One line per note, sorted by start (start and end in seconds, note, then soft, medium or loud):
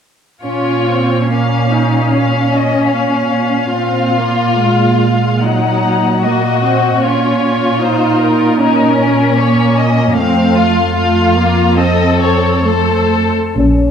0.42 3.73 A#2 soft
0.42 0.84 C#4 soft
0.42 1.25 F4 soft
0.42 1.25 C#5 soft
0.86 1.29 C4 soft
1.29 1.70 A#3 soft
1.29 3.72 C#4 soft
1.29 2.11 F5 soft
1.71 2.12 D#4 soft
2.12 3.77 C#4 soft
2.12 2.52 F5 soft
2.54 2.95 D#5 soft
2.94 5.39 F5 soft
3.76 6.99 A#2 soft
3.76 4.17 C4 soft
3.76 5.42 F4 soft
4.19 4.60 A#3 soft
4.60 5.42 G#3 soft
5.42 6.23 F#3 soft
5.42 6.23 D#4 soft
5.42 6.22 F#5 soft
6.22 6.63 A#3 soft
6.22 7.00 F#4 soft
6.22 7.03 D#5 soft
6.64 7.02 C4 soft
7.02 10.13 A#2 soft
7.02 7.81 C#4 soft
7.02 7.42 F4 soft
7.02 7.80 C#5 soft
7.43 8.58 F4 soft
7.81 8.60 D#4 soft
7.81 8.21 C5 soft
8.21 8.60 A#4 soft
8.60 9.38 C#4 soft
8.60 8.98 D#4 soft
8.60 9.38 A#4 soft
8.98 10.14 C#4 soft
9.38 10.16 A#3 soft
9.38 9.78 C#5 soft
9.79 10.17 D#5 soft
10.17 13.31 F2 soft
10.17 10.95 A3 soft
10.17 10.56 C4 soft
10.17 10.94 F5 soft
10.56 10.94 F4 soft
10.95 11.36 A3 soft
10.95 11.76 F4 soft
10.95 11.76 F5 soft
11.37 11.78 A#3 soft
11.77 12.65 C4 soft
11.77 12.64 A4 soft
11.77 12.19 D#5 soft
12.20 12.64 C#5 soft
12.65 13.35 A3 soft
12.65 13.34 A4 soft
12.65 13.35 C5 soft
13.56 13.91 A#1 soft
13.56 13.91 A#2 soft
13.56 13.91 C#4 soft